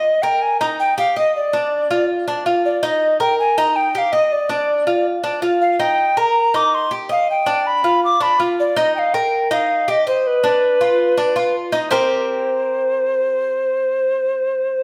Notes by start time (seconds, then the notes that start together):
Already playing: D#5
0.22 A#4 G5
0.42 G#5
0.60 D#4 A#5
0.80 G5
0.98 G4 F5
1.16 D#5
1.36 D5
1.53 D4
1.91 F4
2.28 D4
2.46 F4
2.65 D5
2.83 D#4 D#5
3.20 A#4 G5
3.39 G#5
3.58 D#4 A#5
3.76 G5
3.94 G4 G5
3.98 F5
4.12 D#5
4.32 D5
4.49 D4
4.87 F4
5.24 D4
5.42 F4
5.61 F5
5.79 D#4 G5
6.17 A#4 A#5
6.54 D#4 D6
6.74 C6
6.91 G4
7.09 D#5 F5
7.31 G5
7.46 D4
7.67 B5
7.84 F4
8.04 D6
8.21 D4 B5
8.40 F4
8.60 D5
8.77 D#4 D#5
8.95 F5 G5
9.14 A#4 G5
9.51 D#4 F5
9.88 G4 D#5
10.07 C5 D#5
10.27 B4
10.44 D4
10.81 F4
11.18 D4
11.36 F4
11.72 D#4
11.91 C4 G4 A#4 C5